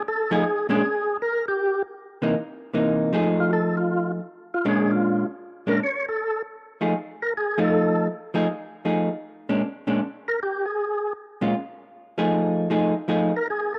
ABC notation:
X:1
M:4/4
L:1/8
Q:"Swing" 1/4=157
K:Bb
V:1 name="Tonewheel organ"
A ^G2 G3 B =G- | G z6 z | z F A F2 z2 F | _A F2 z2 B ^c =A- |
A z4 B ^G A- | A2 z6 | z4 z B G _A- | _A2 z6 |
z4 z B ^G A |]
V:2 name="Hollow-body jazz guitar"
z [F,A,E^G] z [B,,^G,_D=D] z4 | z3 [C,=E,B,^D] z2 [C,E,B,D]2 | [F,A,E^G]4- [F,A,EG] z3 | [B,,_A,^CD]3 z2 [B,,A,CD] z2 |
z3 [F,A,E^G] z3 [F,A,E]- | [F,A,E]2 z [F,A,E^G] z2 [F,A,EG] z | z [B,,_A,^CD] z [B,,A,CD] z4 | z3 [B,,_A,_DF] z3 [F,=A,E_A]- |
[F,A,E_A]2 [F,=A,E^G] z [F,A,EG] z3 |]